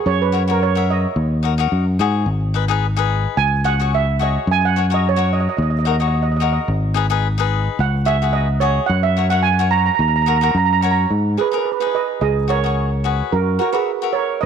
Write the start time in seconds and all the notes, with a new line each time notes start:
0.06 F#2 C#5
0.22 B4
0.32 F#4 A#4 C#5
0.48 F#4 A#4 C#5
0.63 C#5
0.75 F#4 A#4 E5
0.90 D#5
1.16 D#2
1.43 D#4 F#4 A#4
1.58 D#4 F#4 A#4
1.72 F#2
1.99 G#2 D#4 F#4 G#4
2.26 G#1
2.54 D#4 G#4 B4
2.68 D#4 G#4 B4
2.97 D#4 G#4 B4
3.37 C#2 G#5
3.64 F#4 G#4 C#5 F#5
3.79 F#4 G#4 C#5
3.95 E5
4.19 F#4 G#4 C#5 D#5
4.47 F#2
4.51 G#5
4.65 F#5
4.76 F#4 A#4 C#5
4.90 F#4 A#4 C#5
4.94 D#5
5.09 C#5
5.16 F#4 A#4 C#5
5.33 D#5
5.40 D#5
5.49 D#5
5.57 D#2 D#5
5.62 D#5
5.70 D#5
5.79 D#5
5.85 D#4 F#4 A#4 D#5
5.91 D#5
6.00 D#4 F#4 C#5 D#5
6.08 D#5
6.14 D#5
6.23 D#5
6.32 D#5
6.36 D#4 D#5
6.41 F#4 A#4 D#5
6.52 D#5
6.68 G#1
6.94 D#4 G#4 B4
7.10 D#4 G#4 B4
7.38 D#4 G#4 B4
7.79 C#2 F#5
8.05 F#4 G#4 C#5 E5
8.22 F#4 G#4 B4
8.33 D#5
8.60 F#4 G#4 C#5 D#5
8.86 F#2 F#5
9.03 E5
9.17 F#4 A#4 C#5
9.30 F#4 A#4 C#5 F#5
9.43 G#5
9.59 F#4 A#4 C#5
9.71 A#5
9.78 A#5
9.86 A#5
9.95 A#5
9.99 D#2 A#5
10.08 A#5
10.16 A#5
10.22 A#5
10.26 D#4 F#4 A#4 A#5
10.36 A#5
10.41 D#4 F#4 A#4 A#5
10.52 F#2 A#5
10.58 A#5
10.65 A#5
10.73 A#5
10.81 F#4 A#4 C#5 A#5
10.91 A#5
11.10 G#2
11.37 D#4 G#4 B4
11.51 D#4 G#4 A#4 B4
11.58 B4
11.65 B4
11.72 B4
11.80 D#4 G#4 B4
11.87 B4
11.95 B4 D#5
12.21 C#2 G#4 D#5
12.48 F#4 G#4 A#4 C#5
12.64 F#4 G#4 C#5
13.04 F#4 G#4 B4
13.32 F#2 F#4 A#4
13.59 F#4 A#4 C#5
13.72 F#4 G#4 A#4 B4 E5
14.02 F#4 A#4 E5
14.13 A#4 C#5
14.41 D#5